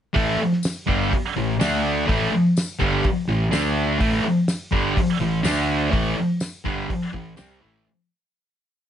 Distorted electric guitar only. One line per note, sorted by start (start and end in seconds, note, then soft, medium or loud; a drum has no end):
0.13 0.38 A2 loud
0.13 0.38 E3 loud
0.13 0.39 A3 loud
0.39 muted distorted electric guitar stroke medium
0.87 1.11 G2 medium
0.87 1.11 D3 medium
0.87 1.11 G3 loud
1.11 muted distorted electric guitar stroke medium
1.36 1.56 A2 medium
1.36 1.56 E3 medium
1.60 2.06 D3 medium
1.60 2.07 A3 medium
1.60 2.08 D4 loud
2.07 2.30 A2 medium
2.07 2.31 E3 loud
2.07 2.32 A3 loud
2.31 muted distorted electric guitar stroke medium
2.79 3.03 G2 loud
2.79 3.03 D3 medium
2.79 3.04 G3 loud
3.03 muted distorted electric guitar stroke medium
3.28 3.48 A2 medium
3.28 3.48 E3 medium
3.51 3.99 D3 loud
3.51 3.99 A3 medium
3.51 4.00 D4 medium
3.99 4.23 A2 medium
3.99 4.24 E3 medium
3.99 4.24 A3 loud
4.24 muted distorted electric guitar stroke medium
4.71 4.95 G2 medium
4.71 4.94 D3 loud
4.71 4.96 G3 loud
4.95 muted distorted electric guitar stroke medium
5.20 5.40 A2 medium
5.20 5.40 E3 medium
5.43 5.90 D3 medium
5.43 5.90 A3 loud
5.43 5.91 D4 loud
5.90 6.15 A2 medium
5.90 6.15 E3 loud
5.90 6.16 A3 loud
6.16 muted distorted electric guitar stroke medium
6.64 6.88 G2 medium
6.64 6.88 D3 medium
6.64 6.89 G3 medium
6.89 muted distorted electric guitar stroke medium
7.13 7.32 A2 medium
7.13 7.32 E3 medium
7.36 7.60 C3 medium
7.36 7.61 G3 loud
7.36 7.61 C4 loud
7.61 7.85 A2 medium
7.61 7.85 E3 medium
7.61 7.85 A3 loud